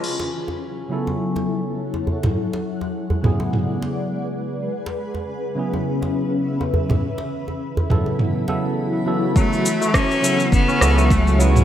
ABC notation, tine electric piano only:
X:1
M:4/4
L:1/8
Q:"Swing 16ths" 1/4=103
K:F#m
V:1 name="Tine electric piano"
z3 [C,F,B,EA]4- [C,F,B,EA] | z3 [C,F,B,EG]4- [C,F,B,EG] | z3 [C,F,B,EG]4- [C,F,B,EG] | z3 [C,F,B,EA]2 [C,F,B,EA]2 [C,F,B,EA]- |
[C,F,B,EA] z2 [C,F,B,EA]2 [C,F,B,EA]2 [C,F,B,EG] |]